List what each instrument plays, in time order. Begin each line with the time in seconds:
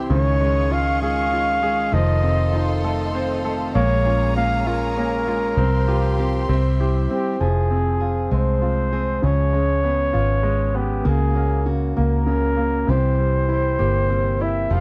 Already playing: grand piano C3 G3 E4 G4, steel-string acoustic guitar E3 C4 E4 G4
0.10 fingered electric bass C#2, grand piano C#3, steel-string acoustic guitar D#3, string section G#4 D#5 F5 C#6, flugelhorn C#5
0.40 grand piano G#3, steel-string acoustic guitar C#4
0.71 grand piano F4, steel-string acoustic guitar F4, flugelhorn F5
1.01 steel-string acoustic guitar G#3, grand piano G#4, flugelhorn F5
1.31 steel-string acoustic guitar C#4, grand piano F4
1.62 steel-string acoustic guitar G#3, grand piano G#4
1.92 fingered electric bass F1, steel-string acoustic guitar D#3, grand piano F3, string section A4 D#5 C6, flugelhorn D#5
2.23 steel-string acoustic guitar C4, grand piano C4
2.54 grand piano D#4, steel-string acoustic guitar F4
2.84 steel-string acoustic guitar A3, grand piano A4
3.15 steel-string acoustic guitar C4, grand piano C5
3.45 steel-string acoustic guitar A3, grand piano A4
3.75 fingered electric bass A#1, steel-string acoustic guitar G#3, grand piano A#3, string section G#4 C#5 A#5, flugelhorn C#5
4.06 steel-string acoustic guitar C#4, grand piano F4
4.36 grand piano A#3, steel-string acoustic guitar F4, flugelhorn F5
4.67 steel-string acoustic guitar G#3, grand piano F4, flugelhorn A#4
4.97 grand piano A#3, steel-string acoustic guitar C#4
5.27 steel-string acoustic guitar G#3, grand piano F4
5.56 fingered electric bass C2, steel-string acoustic guitar F3, grand piano C4, string section G4 C5 F5 C6
5.88 steel-string acoustic guitar F4, grand piano G4
6.19 grand piano C4, steel-string acoustic guitar G4
6.48 fingered electric bass C2, steel-string acoustic guitar G3, grand piano C4, string section C5 E5
6.80 steel-string acoustic guitar E4, grand piano G4
7.10 steel-string acoustic guitar C4, grand piano C4, flugelhorn G4
7.40 fingered electric bass F1, steel-string acoustic guitar F3 G#4, grand piano F3, flugelhorn G#4
7.71 steel-string acoustic guitar C4, grand piano C4
8.00 grand piano F4, steel-string acoustic guitar G#4
8.31 fingered electric bass C2, steel-string acoustic guitar G#3, grand piano C4, flugelhorn C5
8.62 steel-string acoustic guitar C4, grand piano F4
8.93 grand piano C4, steel-string acoustic guitar G#4
9.22 fingered electric bass C#2, grand piano C#3, steel-string acoustic guitar F3 G#4, flugelhorn C#5
9.53 grand piano G#3, steel-string acoustic guitar C#4
9.84 grand piano B3, steel-string acoustic guitar G#4
10.13 fingered electric bass G#1, steel-string acoustic guitar B3, grand piano F4
10.43 grand piano G#3, steel-string acoustic guitar C#4
10.74 grand piano B3, flugelhorn G4
11.05 fingered electric bass C#2, grand piano C#3, steel-string acoustic guitar A#3 F#4, flugelhorn G#4
11.35 grand piano A#3, steel-string acoustic guitar C#4
11.66 grand piano C#3, steel-string acoustic guitar F#4
11.97 fingered electric bass C#2, steel-string acoustic guitar A#3, grand piano A#3, flugelhorn A#4
12.26 grand piano C#3, steel-string acoustic guitar C#4
12.57 grand piano A#3, steel-string acoustic guitar F#4
12.87 fingered electric bass C2, grand piano C3, steel-string acoustic guitar E3 G4, flugelhorn C5
13.19 grand piano G3, steel-string acoustic guitar C4
13.49 grand piano E4, steel-string acoustic guitar G4
13.79 fingered electric bass G1, steel-string acoustic guitar A#3, grand piano G4
14.09 grand piano G3, steel-string acoustic guitar C4
14.40 grand piano E4, steel-string acoustic guitar G4, flugelhorn E5
14.69 fingered electric bass F1, steel-string acoustic guitar F3 G4, grand piano F3, string section G#3 F5 G5 C6
14.74 flugelhorn F5